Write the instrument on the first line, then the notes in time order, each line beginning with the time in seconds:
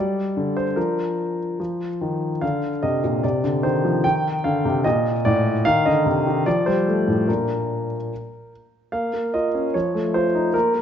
grand piano
Already playing: G3 D5
0.37 D3
0.57 C5
0.76 F3 D4 A#4
1.60 F3
2.01 D#3
2.41 D3 D4 F5
2.83 C3 D#5
3.04 A#2
3.23 C3 D5
3.44 D3
3.63 D#3 C5
3.84 F3
4.04 D#3 D#4 G5
4.44 D3 F5
4.65 C3
4.84 A#2 D#5
5.25 A2 D5
5.65 D#3 D#4 F5
5.86 D3 D#5
6.06 C3
6.26 D#3
6.46 F3 D5
6.66 G3 C5
6.88 A3
7.08 A2
7.28 A#2 A#3 D4 A#4
8.92 A#3 F5
9.13 A#3
9.34 F4 D#5
9.55 C#4
9.74 F3 C#5
9.95 A3
10.14 F4 C5
10.35 D#4
10.54 A#3 A#4
10.75 A#3